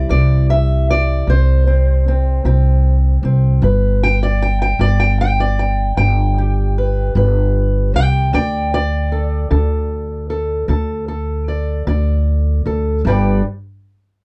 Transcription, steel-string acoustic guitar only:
0.00 8.33 G3 soft
0.00 1.66 C4 soft
0.00 1.28 E4 soft
0.09 0.80 C3 medium
0.09 0.49 D5 loud
0.50 0.89 E5 medium
0.91 1.29 D5 medium
1.27 1.98 C3 medium
1.27 3.63 C5 loud
1.67 2.06 C4 soft
2.08 2.44 C4 soft
2.45 3.16 C3 medium
2.45 3.24 C4 medium
3.25 3.63 C4 soft
3.63 4.33 G2 medium
3.63 4.22 B4 soft
4.03 4.22 G5 loud
4.23 4.42 D5 medium
4.42 4.61 G5 medium
4.62 4.81 G5 loud
4.80 5.51 G2 medium
4.80 5.00 D5 loud
5.00 5.19 G5 medium
5.21 5.40 G5 loud
5.40 5.59 D5 loud
5.59 5.96 G5 medium
5.97 6.68 G2 medium
5.97 7.54 G5 loud
6.38 8.29 G4 soft
6.78 7.16 B4 medium
7.16 7.87 G2 medium
7.16 7.95 B4 medium
7.95 8.33 D5 medium
7.95 8.33 G5 loud
8.34 9.04 D3 medium
8.34 8.73 D5 medium
8.34 8.73 G5 loud
8.74 11.09 D5 loud
9.12 9.50 A4 soft
9.51 10.21 D3 medium
9.51 10.29 A4 medium
10.30 10.69 A4 soft
10.69 11.39 D3 medium
10.69 11.07 A4 soft
11.08 12.65 A4 soft
11.48 11.87 D5 soft
11.87 12.57 D3 medium
11.87 13.00 D5 medium
12.66 13.00 A4 soft
13.06 13.41 G2 medium
13.06 13.41 G3 medium
13.06 13.41 B4 medium
13.06 13.42 D5 medium
13.06 13.42 G5 medium

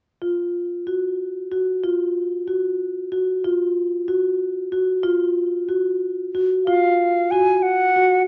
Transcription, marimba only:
0.22 0.56 F4 medium
0.87 1.21 F#4 soft
1.52 1.69 F#4 soft
1.84 2.17 F4 medium
2.48 2.81 F#4 soft
3.12 3.29 F#4 soft
3.44 3.78 F4 medium
4.08 4.42 F#4 soft
4.72 4.89 F#4 medium
5.03 5.38 F4 medium
5.69 6.03 F#4 soft
6.35 6.52 F#4 medium
6.67 7.01 F4 medium
7.32 7.66 F#4 medium
7.97 8.14 F#4 medium

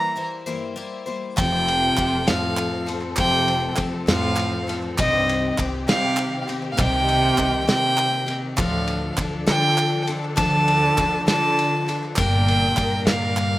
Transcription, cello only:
0.00 0.21 E3 medium
1.38 2.30 C3 loud
2.28 2.88 A2 medium
3.19 3.74 C3 loud
4.07 4.71 A2 loud
4.97 5.53 G2 medium
5.88 6.44 C3 loud
6.72 6.78 A2 medium
6.77 7.67 C3 loud
7.68 8.31 C3 medium
8.59 9.14 A2 medium
9.47 10.03 D3 medium
10.37 11.23 D3 loud
11.27 11.91 D3 loud
12.16 13.02 A#2 medium
13.08 13.59 A#2 medium

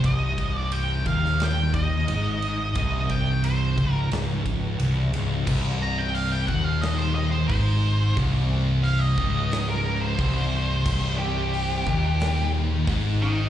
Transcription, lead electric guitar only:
0.06 0.55 D#5 loud
0.55 0.75 D5 loud
0.72 1.06 G5 medium
1.07 1.41 F5 medium
1.44 1.74 G5 loud
1.74 2.75 D#5 loud
2.76 3.11 D#5 medium
3.10 3.45 G5 medium
3.44 3.92 C5 medium
3.92 4.08 A#4 medium
5.82 5.98 A#5 loud
5.98 6.14 G5 medium
6.14 6.31 F5 medium
6.32 6.47 G5 medium
6.47 6.64 F#5 medium
6.64 6.81 F5 medium
6.81 6.98 D#5 medium
6.98 7.14 C5 medium
7.15 7.31 D#5 loud
7.31 7.47 C5 medium
7.48 8.14 C5 medium
8.84 9.01 F5 medium
9.01 9.67 D#5 medium
9.70 10.01 A#4 loud
10.02 11.16 C5 medium
11.19 12.49 G4 loud
13.22 13.49 A#4 medium
13.22 13.49 G5 loud

